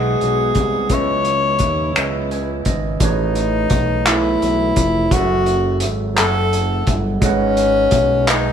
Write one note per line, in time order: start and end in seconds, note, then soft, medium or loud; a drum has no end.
0.00 0.17 B1 medium
0.00 2.97 F#3 medium
0.00 0.88 G#3 medium
0.00 0.92 G#3 medium
0.00 2.97 B3 medium
0.00 0.88 F#4 medium
0.00 0.92 G#4 medium
0.00 0.95 G#4 medium
0.00 0.91 B4 medium
0.00 0.92 D#5 medium
0.00 0.92 E5 medium
0.00 0.92 F#5 medium
0.21 0.53 B1 medium
0.21 closed hi-hat soft
0.55 0.88 C2 medium
0.55 kick medium
0.55 closed hi-hat medium
0.89 1.63 C#2 loud
0.89 1.75 C#3 medium
0.89 1.76 C#4 medium
0.89 2.99 C#4 medium
0.89 2.99 E4 medium
0.89 1.77 B4 medium
0.89 1.77 D#5 medium
0.89 kick medium
0.89 closed hi-hat medium
0.94 2.32 C#5 loud
0.94 1.78 E5 medium
1.25 closed hi-hat soft
1.59 1.92 D#2 medium
1.59 kick medium
1.59 closed hi-hat medium
1.94 2.63 C#2 medium
1.94 2.80 C#3 medium
1.94 2.81 C#4 medium
1.94 2.82 B4 medium
1.94 finger snap loud
1.94 closed hi-hat medium
1.98 2.65 D#5 medium
1.98 2.83 E5 medium
2.31 2.64 G#5 medium
2.31 closed hi-hat soft
2.65 2.98 G#1 medium
2.65 2.99 D#5 medium
2.65 kick medium
2.65 closed hi-hat medium
3.00 3.67 A1 loud
3.00 3.87 E3 medium
3.00 3.86 A3 medium
3.00 4.08 D#4 loud
3.00 3.87 G#4 medium
3.00 3.88 B4 medium
3.00 kick loud
3.00 closed hi-hat medium
3.04 3.88 C#5 medium
3.35 closed hi-hat soft
3.70 4.38 B1 loud
3.70 kick medium
3.70 closed hi-hat medium
4.06 4.92 A3 medium
4.06 5.14 E4 loud
4.06 4.92 E4 medium
4.06 4.93 G#4 medium
4.06 4.93 B4 medium
4.06 clap loud
4.06 closed hi-hat medium
4.11 4.94 E5 medium
4.42 4.74 B1 medium
4.42 closed hi-hat medium
4.76 5.09 F1 medium
4.76 kick medium
4.76 closed hi-hat medium
5.10 5.85 F#1 loud
5.10 5.97 F#3 medium
5.10 5.98 F#4 medium
5.10 5.82 F#4 loud
5.10 5.98 G#4 medium
5.10 kick loud
5.10 closed hi-hat medium
5.15 5.99 A4 medium
5.15 5.99 E5 medium
5.46 closed hi-hat soft
5.80 6.20 G#1 loud
5.80 closed hi-hat medium
6.14 7.01 F#3 medium
6.14 7.02 F#4 medium
6.14 7.03 A4 medium
6.14 7.03 G#5 medium
6.14 clap loud
6.14 closed hi-hat medium
6.18 6.84 F#1 loud
6.18 6.92 A4 loud
6.18 6.24 E5 medium
6.26 7.07 F#5 medium
6.53 closed hi-hat medium
6.87 7.19 G1 loud
6.87 kick medium
6.87 closed hi-hat medium
7.20 7.89 G#1 loud
7.20 8.07 G#3 medium
7.20 8.31 C#4 loud
7.20 8.07 G#4 medium
7.20 7.29 A4 medium
7.20 8.09 D#5 medium
7.20 kick loud
7.20 closed hi-hat medium
7.25 8.09 F#5 medium
7.29 8.11 B4 medium
7.57 closed hi-hat medium
7.91 8.53 B1 medium
7.91 kick medium
7.91 closed hi-hat medium
8.25 8.53 G#3 medium
8.25 8.53 D#4 loud
8.25 8.53 G#4 medium
8.25 8.53 B4 medium
8.25 8.53 D#5 medium
8.25 clap loud
8.25 closed hi-hat medium
8.31 8.53 G#5 medium